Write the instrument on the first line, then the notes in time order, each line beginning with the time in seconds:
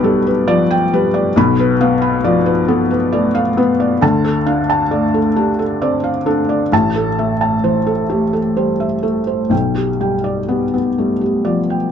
felt piano
Already playing: B1 B2 G3 B3 B4 D5 G5 B5
0.04 G3 A4
0.27 B4
0.48 F3 D5
0.71 G5
0.93 G3 B4
1.14 D5
1.36 B1 B2 B5
1.59 B4
1.81 B3 F5
2.02 B5
2.24 F3 D5
2.46 B4
2.68 B3 A4
2.91 B4
3.12 A3 D5
3.35 F5
3.57 B3 B4
3.80 D5
4.01 D2 D3 A5
4.24 A4
4.46 D4 F5
4.70 A5
4.91 A3 D5
5.14 A4
5.36 D4 G4
5.59 A4
5.82 C4 D5
6.04 F5
6.26 D4 A4
6.49 D5
6.72 A1 A2 A5
6.96 A4
7.18 A3 E5
7.41 A5
7.64 E3 C5
7.87 A4
8.09 A3 G4
8.33 A4
8.57 G3 C5
8.80 E5
9.03 A3 A4
9.27 C5
9.49 B1 B2 G5
9.75 G4
10.01 G3 G5
10.24 D5
10.48 B3 G4
10.74 B3
10.98 G3 A3
11.21 G4
11.45 F3 D5
11.70 G5